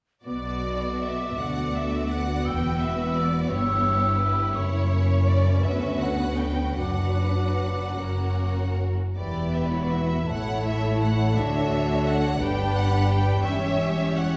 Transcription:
0.25 B1 B2 B3 F#4 D5 D6
1.01 E5
1.38 D2 B3 F#4 D5 F#5
1.75 E5
2.10 F#5
2.45 E1 E2 B4 G5 E6
2.80 E5
3.15 D5
3.50 G1 G2 E4 G4 C#5 E6
4.19 B4
4.55 F#1 F#2 A#3 C#4 C#5 C#6
5.27 D5
5.62 D2 B3 F#4 B4 E5
6.00 F#5
6.39 G5
6.79 F#1 F#2 F#3 D4 F#4 B4 F#5 D6
7.97 F#1 F#2 A#3 C#4 F#4 A#4
9.17 E1 E2 B3 E4 G4 B4 D5 B5
9.55 E5
9.65 D5
9.72 F#4 C#5
9.82 D5
9.92 E5
10.27 A1 A2 A3 E4 C#5 A5
10.31 F#5
10.67 E5
11.02 F#5
11.38 D2 D3 A3 D4 F#4 C#5 E5
12.10 F#5
12.41 G1 G2 G3 D4 G4 B4 G5 B5
12.77 F#5
13.10 G5
13.43 E1 E2 G3 C#4 G4 C#5 E5 C#6
13.97 G3
14.16 F#5

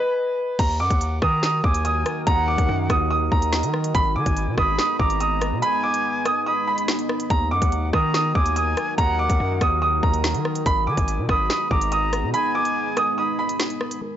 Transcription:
Already playing: B4 B5
0.59 D#2 D#3 D#4 F#4 A#4 A#5, kick, closed hi-hat, crash
0.80 F#2 F#5 D6
0.90 D#2, kick, closed hi-hat
1.01 closed hi-hat
1.22 D#3 A#5 D#6, kick, cross-stick
1.43 D#6, snare
1.64 D#2 G#5 D6, kick
1.74 closed hi-hat
1.85 D#6, closed hi-hat
2.06 cross-stick, closed hi-hat
2.27 D#2 F#5 A#5, kick, closed hi-hat
2.48 D6
2.58 D#2, kick, closed hi-hat
2.69 F#2
2.90 D#2 D#6, kick, cross-stick, closed hi-hat
3.11 D#6
3.32 D#2 A#5, kick
3.42 closed hi-hat
3.53 snare, closed hi-hat
3.63 D#3, closed hi-hat
3.74 cross-stick
3.84 closed hi-hat
3.95 G#1 G#3 B3 B5, kick, closed hi-hat
4.16 D#3 G#5 D6
4.26 G#1, kick, closed hi-hat
4.37 closed hi-hat
4.47 B2
4.58 G#1 B5 D#6, kick, cross-stick
4.79 D#6, snare
4.99 G#1 A#5 D6, kick
5.10 closed hi-hat
5.21 D#6, closed hi-hat
5.41 cross-stick, closed hi-hat
5.52 B2
5.62 G#5 B5, closed hi-hat
5.83 D6
5.94 closed hi-hat
6.25 D#6, cross-stick, closed hi-hat
6.46 B5 D#6
6.67 B5
6.78 closed hi-hat
6.88 snare, closed hi-hat
6.99 closed hi-hat
7.09 cross-stick
7.20 closed hi-hat
7.30 D#2 D#3 F#4 A#4 A#5, kick, closed hi-hat
7.51 F#2 F#5 D6
7.62 D#2, kick, closed hi-hat
7.72 closed hi-hat
7.93 D#3 A#5 D#6, kick, cross-stick
8.14 D#6, snare
8.35 D#2 G#5 D6, kick
8.46 closed hi-hat
8.56 D#6, closed hi-hat
8.77 cross-stick, closed hi-hat
8.98 D#2 F#5 A#5, kick, closed hi-hat
9.19 D6
9.30 D#2, kick, closed hi-hat
9.40 F#2
9.61 D#2 D#6, kick, cross-stick, closed hi-hat
9.82 D#6
10.03 D#2 A#5, kick
10.14 closed hi-hat
10.24 snare, closed hi-hat
10.35 D#3, closed hi-hat
10.45 cross-stick
10.55 closed hi-hat
10.66 G#1 G#3 B3 D#4 B5, kick, closed hi-hat
10.87 D#3 G#5 D6
10.97 G#1, kick, closed hi-hat
11.08 closed hi-hat
11.18 B2
11.29 G#1 B5 D#6, kick, cross-stick
11.50 D#6, snare
11.71 G#1 A#5 D6, kick
11.81 closed hi-hat
11.92 D#6, closed hi-hat
12.13 cross-stick, closed hi-hat
12.23 B2
12.34 G#5 B5, closed hi-hat
12.55 D6
12.65 closed hi-hat
12.97 D#6, cross-stick, closed hi-hat
13.18 B5 D#6
13.39 B5
13.49 closed hi-hat
13.60 snare, closed hi-hat
13.70 closed hi-hat
13.81 cross-stick
13.91 closed hi-hat
14.02 D#2 D#3 A#3 F#4 A#4

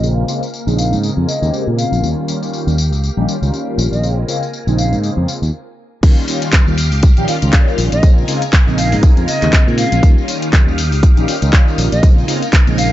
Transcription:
Already playing: A#1 A#3
0.02 C#3 G#3 A#3 C4 F4 A#4 G#5, tambourine
0.27 C#3 G#3 A#3 C4 F4, tambourine
0.43 tambourine
0.54 tambourine
0.67 A#1 C#3 G#3 A#3 C4 D#4, tambourine
0.77 F5, tambourine
0.92 G#2, tambourine
1.03 tambourine
1.17 F2 C#3 G#3 A#3 C4 F4
1.27 D#5, tambourine
1.41 D#2 C#3 G#3 A#3 C4 G4, tambourine
1.54 tambourine
1.66 A#2 C#3 G#3 A#3 C4 F4
1.78 F5, tambourine
1.92 A#1, tambourine
2.02 D#2 D#3 G3 A#3 C#4 F4 G4 F5, tambourine
2.27 D#3 G3 A#3 C#4 F4, tambourine
2.43 tambourine
2.53 tambourine
2.66 D#2 D#3 G3 A#3 C#4 F4, tambourine
2.78 tambourine
2.92 C#2, tambourine
3.04 tambourine
3.16 A#1 D#3 G3 A#3 C#4 G4
3.27 D#3 G3 A#3 C#4 F4, tambourine
3.41 C#2 D#3 G3 A#3 C#4 F4, tambourine
3.54 tambourine
3.78 A#1, tambourine
3.92 A#1 D#5, tambourine
4.02 C#3 G#3 A#3 C4 F4 A#4 G#5, tambourine
4.27 C#3 G#3 A#3 C4 F4, tambourine
4.43 tambourine
4.53 tambourine
4.67 A#1 C#3 G#3 A#3 C4 D#4, tambourine
4.78 F5, tambourine
4.92 G#2, tambourine
5.03 tambourine
5.17 F2 C#3 G#3 A#3 C4 F4
5.28 tambourine
5.42 D#2, tambourine
6.03 D#2 D#3 G3 A#3 C#4 D#4 F4 G4 F5, kick, closed hi-hat, crash, tambourine
6.18 tambourine
6.27 D#3 G3 A#3 C#4 F4, open hi-hat, tambourine
6.42 closed hi-hat, tambourine
6.53 kick, clap, closed hi-hat, tambourine
6.67 D#2 D#3 G3 A#3 C#4 F4, tambourine
6.78 open hi-hat, tambourine
6.92 C#2, open hi-hat, tambourine
7.03 kick, closed hi-hat, tambourine
7.17 A#1 D#3 G3 A#3 C#4 G4, closed hi-hat, tambourine
7.28 D#3 G3 A#3 C#4 F4, open hi-hat, tambourine
7.42 C#2 D#3 G3 A#3 C#4 F4, closed hi-hat, tambourine
7.53 kick, clap, closed hi-hat, tambourine
7.68 tambourine
7.78 A#1, open hi-hat, tambourine
7.92 A#1 D#5, closed hi-hat, tambourine
8.03 C#3 G#3 A#3 C4 F4 A#4 G#5, kick, closed hi-hat, tambourine
8.18 tambourine
8.28 C#3 G#3 A#3 C4 F4, open hi-hat, tambourine
8.42 closed hi-hat, tambourine
8.53 kick, clap, closed hi-hat, tambourine
8.67 A#1 C#3 G#3 A#3 C4 D#4, tambourine
8.78 F5, open hi-hat, tambourine
8.92 G#2, open hi-hat, tambourine
9.03 kick, closed hi-hat, tambourine
9.17 F2 C#3 G#3 A#3 C4 F4, closed hi-hat, tambourine
9.28 D#5, open hi-hat, tambourine
9.42 D#2 C#3 G#3 A#3 C4 G4, clap, closed hi-hat, tambourine
9.53 kick, clap, closed hi-hat, tambourine
9.67 A#2 C#3 G#3 A#3 C4 F4, tambourine
9.78 F5, open hi-hat, tambourine
9.92 A#1, closed hi-hat, tambourine
10.02 D#3 G3 A#3 C#4 F4 G4 F5, kick, closed hi-hat, tambourine
10.18 tambourine
10.27 D#3 G3 A#3 C#4 F4, open hi-hat, tambourine
10.42 closed hi-hat, tambourine
10.53 kick, clap, closed hi-hat, tambourine
10.67 D#2 D#3 G3 A#3 C#4 F4, tambourine
10.78 open hi-hat, tambourine
10.92 C#2, open hi-hat, tambourine
11.03 kick, closed hi-hat, tambourine
11.16 A#1 D#3 G3 A#3 C#4 G4, closed hi-hat, tambourine
11.27 D#3 G3 A#3 C#4 F4, open hi-hat, tambourine
11.41 C#2 D#3 G3 A#3 C#4 F4, closed hi-hat, tambourine
11.53 kick, clap, closed hi-hat, tambourine
11.68 tambourine
11.78 A#1, open hi-hat, tambourine
11.92 A#1 D#5, closed hi-hat, tambourine
12.02 C#3 G#3 A#3 C4 F4 A#4 G#5, kick, closed hi-hat, tambourine
12.18 tambourine
12.27 C#3 G#3 A#3 C4 F4, open hi-hat, tambourine
12.42 closed hi-hat, tambourine
12.53 kick, clap, closed hi-hat, tambourine
12.67 A#1 C#3 G#3 A#3 C4 D#4, closed hi-hat, tambourine
12.78 F5, open hi-hat, tambourine

